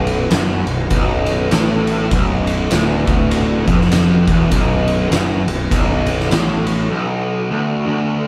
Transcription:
Already playing: fingered electric bass B0, distorted electric guitar B1, string machine B3 F#4 B4
0.07 ride
0.31 fingered electric bass F#1, distorted electric guitar F#2, snare, ride
0.67 fingered electric bass B0, distorted electric guitar B1, ride
0.90 fingered electric bass B0, distorted electric guitar B1, kick, ride
1.26 ride
1.51 fingered electric bass A1, distorted electric guitar A2, snare, ride
1.87 ride
2.11 fingered electric bass B0, distorted electric guitar B1, kick, ride
2.47 ride
2.71 fingered electric bass D1, distorted electric guitar D2, snare, ride
3.07 fingered electric bass D1, distorted electric guitar D2, kick, ride
3.31 ride
3.67 fingered electric bass F1, distorted electric guitar F2, kick, ride
3.81 snare
3.92 snare, ride
4.27 fingered electric bass E1, distorted electric guitar E2, kick, ride
4.51 fingered electric bass B0, distorted electric guitar B1, kick, ride
4.88 ride
5.11 fingered electric bass F#1, distorted electric guitar F#2, snare, ride
5.47 fingered electric bass B0, distorted electric guitar B1, ride
5.71 fingered electric bass B0, distorted electric guitar B1, kick, ride
6.06 ride
6.20 snare
6.31 fingered electric bass A1, distorted electric guitar A2, snare, ride
6.67 ride
6.90 distorted electric guitar B1
7.51 distorted electric guitar D2
7.87 distorted electric guitar D2

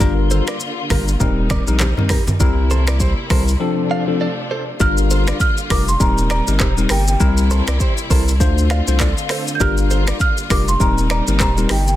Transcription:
0.00 sub bass G1, string section D3 G3 A#3 F4, tine electric piano G3 D4 F4 A#4, clean electric guitar G4 A#4, kick, shaker
0.31 clean electric guitar A4 C5, high conga, shaker
0.47 clean electric guitar A#4 D5, finger snap, cross-stick, shaker
0.60 shaker
0.90 sub bass G1, tine electric piano G3 D4 F4 A#4, clean electric guitar G4 A#4, finger snap, kick, cross-stick, open hi-hat, high conga, low conga, shaker
1.08 shaker
1.20 sub bass D#1, string section C3 D#4, tine electric piano G3 C4 D#4 A#4, kick, low conga, shaker
1.50 clean electric guitar A#4 D5, finger snap, kick, cross-stick, high conga, shaker
1.67 sub bass A#1, tine electric piano G3 C4 D#4 A#4, shaker
1.79 clean electric guitar G4 C5, finger snap, cross-stick, clap, high conga, low conga, shaker
1.97 tine electric piano G3 C4 D#4 A#4, mid tom, high conga
2.09 clean electric guitar G4 A#4, finger snap, kick, cross-stick, open hi-hat, low conga, shaker
2.27 mid tom, high conga, shaker
2.40 sub bass C2, string section C3 A#3 E4, tine electric piano G3 C4 E4 A#4, kick, shaker
2.71 clean electric guitar A4 C5, high conga, shaker
2.87 clean electric guitar A#4 D5, finger snap, cross-stick, shaker
3.00 clean electric guitar G4 C5, kick, shaker
3.30 sub bass C2, tine electric piano G3 C4 E4 A#4, clean electric guitar A4 C5, finger snap, kick, cross-stick, open hi-hat, high conga, low conga, shaker
3.48 shaker
3.60 tine electric piano F3 C4 D4 A4, string section F3 A3 D4
3.91 clean electric guitar D5 F5
4.07 tine electric piano F3 C4 D4 A4
4.21 clean electric guitar A4 D5
4.51 clean electric guitar A4 C5
4.80 sub bass G1, string section D3 G3 A#3 F4, tine electric piano G3 D4 F4 A#4, clean electric guitar G4 A#4, marimba F6, kick, shaker
4.97 shaker
5.11 clean electric guitar A4 C5, shaker
5.28 clean electric guitar A#4 D5, finger snap, cross-stick, shaker
5.40 marimba F6, kick, shaker
5.58 shaker
5.70 sub bass F1, tine electric piano G3 D4 F4 A#4, clean electric guitar G4 A#4, marimba D6, finger snap, kick, cross-stick, open hi-hat, shaker
5.88 marimba C6, shaker
6.00 sub bass D#1, string section C3 D#4, tine electric piano G3 C4 D#4 A#4, marimba A#5, kick, shaker
6.18 shaker
6.30 clean electric guitar A#4 D5, marimba A#5, finger snap, cross-stick, shaker
6.47 sub bass G1, tine electric piano G3 C4 D#4 A#4, shaker
6.60 sub bass D#1, clean electric guitar G4 C5, finger snap, kick, cross-stick, clap, shaker
6.77 tine electric piano G3 C4 D#4 A#4, shaker
6.89 sub bass G1, clean electric guitar G4 A#4, marimba G5, finger snap, cross-stick, open hi-hat, shaker
7.08 marimba G5, shaker
7.20 sub bass C2, tine electric piano G3 C4 E4 A#4, string section E4, kick, shaker
7.37 shaker
7.51 clean electric guitar A4 C5, shaker
7.68 sub bass C2, clean electric guitar A#4 D5, finger snap, cross-stick, shaker
7.80 clean electric guitar G4 C5, kick, shaker
7.98 shaker
8.10 sub bass C2, tine electric piano G3 C4 E4 A#4, clean electric guitar A4 C5, kick, open hi-hat, shaker
8.28 shaker
8.40 sub bass D2, string section D3 A3 C4 F4, tine electric piano A3 D4 F4 C5, kick, shaker
8.58 shaker
8.70 clean electric guitar D5 F5, finger snap, cross-stick, shaker
8.87 sub bass C2, tine electric piano A3 D4 F4 C5, shaker
9.00 clean electric guitar A4 D5, finger snap, kick, cross-stick, clap, shaker
9.18 shaker
9.29 clean electric guitar A4 C5, finger snap, cross-stick, open hi-hat, shaker
9.48 shaker
9.55 marimba G6
9.60 sub bass G1, tine electric piano G3 D4 F4 A#4, string section G3 A#3 F4, clean electric guitar G4 A#4, marimba F6, kick, shaker
9.77 shaker
9.91 clean electric guitar A4 C5, shaker
10.07 clean electric guitar A#4 D5, finger snap, cross-stick, shaker
10.20 marimba F6, kick, shaker
10.38 shaker
10.50 sub bass F1, tine electric piano G3 D4 F4 A#4, clean electric guitar G4 A#4, marimba D6, finger snap, kick, cross-stick, open hi-hat, shaker
10.68 marimba C6, shaker
10.80 sub bass D#1, string section C3 D#4, tine electric piano G3 C4 D#4 A#4, marimba A#5, kick, shaker
10.98 shaker
11.10 clean electric guitar A#4 D5, marimba A#5, finger snap, cross-stick, shaker
11.27 sub bass G1, tine electric piano G3 C4 D#4 A#4, shaker
11.40 sub bass D#1, clean electric guitar G4 C5, marimba A#5, finger snap, kick, cross-stick, clap, shaker
11.57 tine electric piano G3 C4 D#4 A#4, shaker
11.69 sub bass G1, clean electric guitar D#4 G4, marimba G5, finger snap, cross-stick, open hi-hat, shaker
11.88 marimba G5, shaker

